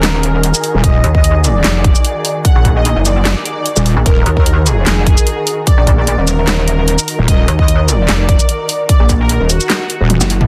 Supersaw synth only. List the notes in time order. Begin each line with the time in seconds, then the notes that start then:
Already playing: A#4
0.84 D#5
1.15 D#5
1.44 D5
2.45 F#5
2.76 D#5
3.05 D5
4.06 A#4
4.37 A#4
4.66 G#4
5.67 D5
5.98 D5
6.27 A#4
7.28 D#5
7.59 D#5
7.88 D5
8.89 D5
9.20 A#4
9.50 F#4